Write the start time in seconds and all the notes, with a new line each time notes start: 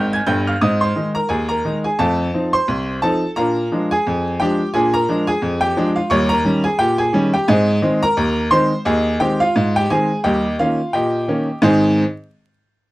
Already playing: G#1 G#2 G5 G6
0.13 G#5 G#6
0.27 G1 G2 G5 G6
0.47 F5 F6
0.61 G#2 C4 D#5 D#6
0.81 C5 C6
0.96 D#3 G#3 D#4
1.15 A#4 A#5
1.29 D#2 G#4 G#5
1.49 A#4 A#5
1.65 D#3 G#3 D#4
1.84 G#4 G#5
1.99 F2 A3 A4 F5 A5
2.34 F3 C4 D#4
2.53 C5 C6
2.68 C2
3.02 F3 C4 D#4 A4 A5
3.36 A#2 D4 A#4 F5 A#5
3.72 F3 G#3 D4
3.91 G#4 G#5
4.07 F2
4.40 F3 G#3 D4 G4 G5
4.74 A#2 D4 G#4 G#5
4.94 A#4 A#5
5.09 F3 G#3 D4
5.27 G#4 G#5
5.42 F2
5.61 G4 G5
5.77 F3 G#3 D4
5.96 F4 F5
6.10 D#2 G3 C#5 C#6
6.29 A#4 A#5
6.45 D#3 G3 C#4
6.64 G#4 G#5
6.79 A#2 G4 G5
6.98 G#4 G#5
7.13 D#3 G3 C#4
7.34 G4 G5
7.48 G#2 C4 G#4 D#5 G#5
7.82 D#3 G#3 C4
8.03 A#4 A#5
8.17 D#2
8.51 D#3 G#3 C4 C5 C6
8.85 D#2 G#4 D#5 G#5
9.20 D#3 G#3 C4 G4 G5
9.40 F4 F5
9.56 G#2
9.76 G4 G5
9.90 D#3 G#3 C4 G#4 G#5
10.24 D#2 G3 G4 D#5 G5
10.59 D#3 A#3 C#4 F4 F5
10.93 A#2 G4 D#5 G5
11.28 D#3 A#3 C#4
11.62 G#2 D#3 C4 D#4 G#4 C5 G#5